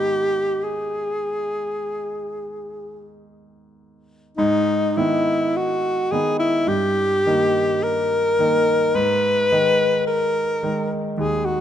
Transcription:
Already playing: grand piano G#2 D#3 B3 D#4, alto saxophone G4
0.64 alto saxophone G#4
4.37 grand piano G#2, alto saxophone D#4
4.97 grand piano D#3 B3 D#4, alto saxophone E4
5.57 alto saxophone F#4
6.12 grand piano D#3 B3 D#4, alto saxophone G#4
6.39 alto saxophone E4
6.67 grand piano G2, alto saxophone G4
7.26 grand piano D#3 A#3 D#4
7.83 alto saxophone A#4
8.39 grand piano D#3 A#3 D#4
8.95 grand piano G#2, alto saxophone B4
9.52 grand piano D#3 G#3 D#4
10.07 alto saxophone A#4
10.63 grand piano D#3 G#3 D#4
11.18 grand piano D#2, alto saxophone G#4
11.45 alto saxophone F#4

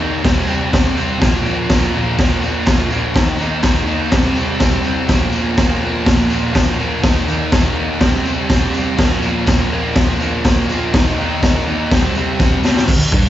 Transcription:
0.00 distorted electric guitar D#3 A#3 D#4
0.23 distorted electric guitar C3 G3 C4, kick, snare, crash
0.47 distorted electric guitar C3 G3 C4, tambourine
0.72 distorted electric guitar C3 G3 C4, kick, snare, tambourine, crash
0.96 distorted electric guitar C3 G3 C4, tambourine
1.20 distorted electric guitar A#2 F3 A#3, kick, snare, tambourine, crash
1.46 distorted electric guitar A#2 F3 A#3, tambourine
1.70 distorted electric guitar A#2 F3 A#3, kick, snare, tambourine, crash
1.94 distorted electric guitar A#2 F3 A#3
2.19 distorted electric guitar A#2 F3 A#3, kick, snare, crash
2.42 distorted electric guitar A#2 F3 A#3, tambourine
2.66 distorted electric guitar A#2 F3 A#3, kick, snare, tambourine, crash
2.90 distorted electric guitar A#2 F3 A#3, tambourine
3.14 distorted electric guitar D#3 A#3 D#4, kick, snare, tambourine, crash
3.38 distorted electric guitar D#3 A#3 D#4, tambourine
3.63 distorted electric guitar D#3 A#3 D#4, kick, snare, tambourine, crash
3.86 distorted electric guitar D#3 A#3 D#4, tambourine
4.12 distorted electric guitar C3 G3 C4, kick, snare, tambourine, crash
4.36 distorted electric guitar C3 G3 C4, tambourine
4.60 distorted electric guitar C3 G3 C4, kick, snare, tambourine, crash
4.84 distorted electric guitar C3 G3 C4, tambourine
5.08 distorted electric guitar A#2 F3, kick, snare, tambourine, crash
5.13 distorted electric guitar A#3
5.32 distorted electric guitar A#2 F3 A#3, tambourine
5.57 distorted electric guitar A#2 F3 A#3, kick, snare, tambourine, crash
5.83 distorted electric guitar A#2 F3 A#3
6.05 distorted electric guitar A#2 F3 A#3, kick, snare, crash
6.30 distorted electric guitar A#2 F3 A#3, tambourine
6.53 distorted electric guitar A#2 F3 A#3, kick, snare, tambourine, crash
6.78 distorted electric guitar A#2 F3 A#3, tambourine
7.02 distorted electric guitar D#3 A#3 D#4, kick, snare, tambourine, crash
7.27 distorted electric guitar D#3 A#3 D#4, tambourine
7.52 distorted electric guitar D#3 A#3 D#4, kick, snare, tambourine, crash
7.76 distorted electric guitar D#3 A#3 D#4
8.01 distorted electric guitar C3 G3 C4, kick, snare, crash
8.26 distorted electric guitar C3 G3 C4, tambourine
8.49 distorted electric guitar C3 G3 C4, kick, snare, tambourine, crash
8.73 distorted electric guitar C3 G3 C4, tambourine
8.97 distorted electric guitar A#2 F3 A#3, kick, snare, tambourine, crash
9.21 distorted electric guitar A#2 F3 A#3, tambourine
9.46 distorted electric guitar A#2 F3 A#3, kick, snare, tambourine, crash
9.71 distorted electric guitar A#2 F3 A#3
9.95 distorted electric guitar A#2 F3 A#3, kick, snare, crash
10.20 distorted electric guitar A#2 F3 A#3, tambourine
10.44 distorted electric guitar A#2 F3 A#3, kick, snare, tambourine, crash
10.69 distorted electric guitar A#2 F3 A#3, tambourine
10.94 distorted electric guitar D#3 A#3 D#4, kick, snare, tambourine, crash
11.19 distorted electric guitar D#3 A#3 D#4
11.43 distorted electric guitar D#3 A#3 D#4, kick, snare, tambourine, crash
11.67 distorted electric guitar D#3 A#3 D#4, tambourine
11.91 distorted electric guitar C3 G3 C4, kick, snare, tambourine, crash
12.15 distorted electric guitar C3 G3 C4, tambourine
12.40 distorted electric guitar C3 G3 C4, kick, snare, tambourine
12.63 distorted electric guitar C3 G3 C4, snare, tambourine
12.76 snare
12.88 kick, crash
13.12 distorted electric guitar G2, kick

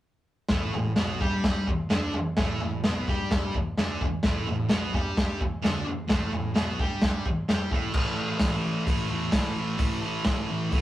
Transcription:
0.49 picked electric bass A1, distorted electric guitar A2 A3, kick, snare, floor tom
0.74 picked electric bass A1, distorted electric guitar A2, floor tom
0.96 picked electric bass B1, distorted electric guitar B2 B3, snare, floor tom
1.20 picked electric bass G2, distorted electric guitar G3 G4, kick, floor tom
1.44 kick, snare, floor tom
1.67 muted distorted electric guitar stroke, muted picked electric bass stroke, kick, floor tom
1.90 picked electric bass D2, distorted electric guitar D3 D4, snare, floor tom
2.14 muted distorted electric guitar stroke, muted picked electric bass stroke, floor tom
2.37 picked electric bass A1, distorted electric guitar A2 A3, kick, snare, floor tom
2.60 distorted electric guitar A2, floor tom
2.65 picked electric bass A1
2.84 picked electric bass B1, distorted electric guitar B2 B3, snare, floor tom
3.08 picked electric bass G2, distorted electric guitar G3 G4, kick, floor tom
3.31 kick, snare, floor tom
3.54 muted picked electric bass stroke, muted distorted electric guitar stroke, kick, floor tom
3.77 picked electric bass D2, distorted electric guitar D3 D4, snare, floor tom
4.01 muted distorted electric guitar stroke, muted picked electric bass stroke, kick, floor tom
4.23 picked electric bass A1, distorted electric guitar A2 A3, kick, snare, floor tom
4.47 picked electric bass A1, distorted electric guitar A2, floor tom
4.69 picked electric bass B1, distorted electric guitar B2 B3, snare, floor tom
4.93 picked electric bass G2, distorted electric guitar G3 G4, kick, floor tom
5.17 kick, snare, floor tom
5.39 muted distorted electric guitar stroke, muted picked electric bass stroke, kick, floor tom
5.62 picked electric bass D2, distorted electric guitar D3 D4, snare, floor tom
5.86 muted distorted electric guitar stroke, muted picked electric bass stroke, floor tom
6.08 picked electric bass A1, distorted electric guitar A2 A3, kick, snare, floor tom
6.32 picked electric bass A1, distorted electric guitar A2, floor tom
6.54 picked electric bass B1, distorted electric guitar B2 B3, snare, floor tom
6.79 picked electric bass G2, distorted electric guitar G3 G4, kick, floor tom
7.02 kick, snare, floor tom
7.25 muted distorted electric guitar stroke, muted picked electric bass stroke, kick, floor tom
7.49 picked electric bass G2, distorted electric guitar G3 G4, snare, floor tom
7.71 picked electric bass A1, distorted electric guitar A2 A3, kick, floor tom
7.93 picked electric bass A1, distorted electric guitar A2 E3, kick, crash
7.97 distorted electric guitar A3
8.17 distorted electric guitar A3
8.21 distorted electric guitar E3
8.38 picked electric bass A1, distorted electric guitar A2 E3, kick, snare, open hi-hat
8.44 distorted electric guitar A3
8.65 picked electric bass A1
8.85 picked electric bass A1, distorted electric guitar A2 E3, kick, open hi-hat
8.89 distorted electric guitar A3
9.09 picked electric bass E2, distorted electric guitar A3
9.13 distorted electric guitar E3
9.31 picked electric bass A1, distorted electric guitar A2 E3, kick, snare, open hi-hat
9.36 distorted electric guitar A3
9.55 picked electric bass A1, distorted electric guitar A3
9.59 distorted electric guitar E3
9.78 picked electric bass A1, distorted electric guitar A2 E3, kick, open hi-hat
9.82 distorted electric guitar A3
10.01 distorted electric guitar A3
10.06 distorted electric guitar E3
10.24 picked electric bass A1, distorted electric guitar A2 E3, kick, snare, open hi-hat
10.28 distorted electric guitar A3
10.51 picked electric bass A1
10.70 picked electric bass A1, distorted electric guitar A2 E3, kick, open hi-hat
10.74 distorted electric guitar A3

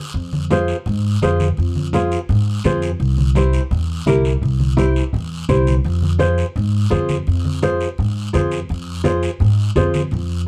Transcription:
0.14 upright bass F2, high conga
0.33 high conga
0.51 nylon-string guitar F4 G#4 C5, high conga, short guiro
0.68 short guiro
0.86 upright bass G#2, high conga, low conga, long guiro
1.22 upright bass F2, nylon-string guitar F4 G#4 C5, high conga, short guiro
1.40 high conga, short guiro
1.57 upright bass F2, high conga, long guiro
1.76 high conga
1.93 nylon-string guitar F4 G#4 C5, high conga, short guiro
2.12 short guiro
2.29 upright bass G#2, high conga, low conga, long guiro
2.64 upright bass F2, nylon-string guitar F4 G#4 C5, high conga, low conga, short guiro
2.82 short guiro
3.00 upright bass C2, high conga, long guiro
3.17 high conga
3.35 nylon-string guitar E4 G4 C5, high conga, short guiro
3.53 short guiro
3.71 upright bass E2, high conga, low conga, long guiro
4.06 upright bass C2, nylon-string guitar E4 G4 A#4, high conga, short guiro
4.25 short guiro
4.42 upright bass C2, high conga, low conga, long guiro
4.59 high conga
4.77 nylon-string guitar E4 G4 C5, high conga, short guiro
4.96 short guiro
5.13 upright bass E2, high conga, low conga, long guiro
5.49 upright bass C2, nylon-string guitar E4 G4 C5, high conga, low conga, short guiro
5.67 high conga, short guiro
5.84 upright bass F2, high conga, long guiro
6.02 high conga
6.19 nylon-string guitar F4 G#4 C5, high conga, short guiro
6.38 short guiro
6.56 upright bass G#2, high conga, low conga, long guiro
6.90 upright bass F2, nylon-string guitar F4 G#4 C5, high conga, short guiro
7.09 high conga, short guiro
7.27 upright bass F2, high conga, long guiro
7.45 high conga
7.62 nylon-string guitar F4 G#4 C5, high conga, short guiro
7.81 short guiro
7.98 upright bass G#2, high conga, low conga, long guiro
8.33 upright bass F2, nylon-string guitar F4 G#4 C5, high conga, short guiro
8.51 short guiro
8.69 upright bass F2, high conga, long guiro
9.04 nylon-string guitar F4 G#4 C5, high conga, short guiro
9.23 short guiro
9.40 upright bass G#2, high conga, low conga, long guiro
9.76 upright bass F2, nylon-string guitar F4 G#4 C5, high conga, short guiro
9.94 high conga, short guiro
10.11 upright bass F2, high conga, low conga, long guiro

